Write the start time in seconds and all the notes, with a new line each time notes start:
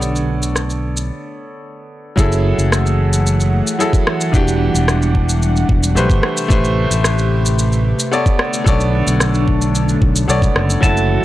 Already playing: B1 D3 A3 B3 D4 A4 C#5 D5
0.02 shaker
0.16 shaker
0.42 shaker
0.56 cross-stick, shaker
0.70 shaker
0.97 shaker
2.16 F#1 E3 F#3 A3 E4 G#4 A4 F#5, kick, shaker
2.32 shaker
2.58 F#1, shaker
2.72 cross-stick, shaker
2.86 shaker
3.13 shaker
3.27 shaker
3.40 shaker
3.67 shaker
3.79 F#3 E4 G#4 A4, shaker
3.93 kick, shaker
4.07 cross-stick
4.21 shaker
4.32 E1 E3 G3 D4 F#4 G4, kick, shaker
4.48 shaker
4.74 E1, shaker
4.88 cross-stick, shaker
5.02 shaker
5.15 kick
5.29 shaker
5.42 shaker
5.56 shaker
5.69 E1, kick
5.83 shaker
5.95 B1 A3 G4 B4 C5, shaker
6.09 G1, kick, shaker
6.23 C3 A3 G4, cross-stick
6.37 shaker
6.48 A1 A3 G4 B4 C5, kick, shaker
6.64 shaker
6.91 A1, shaker
7.04 cross-stick, shaker
7.18 shaker
7.46 shaker
7.59 shaker
7.72 shaker
7.99 shaker
8.12 B3 A4 C#5 D5, shaker
8.26 kick, shaker
8.39 D3 D4, cross-stick
8.53 shaker
8.64 B1 B3 A4 C#5 D5, kick, shaker
8.80 shaker
9.07 B1, shaker
9.20 cross-stick, shaker
9.34 shaker
9.48 kick
9.62 shaker
9.75 shaker
9.89 shaker
10.02 B1, kick
10.16 shaker
10.28 B1 B3 A4 C#5 D5, shaker
10.42 kick, shaker
10.55 F#1, cross-stick
10.70 shaker
10.81 F#1 E3 F#3 E4 F#4 A4 A5, kick, shaker
10.97 shaker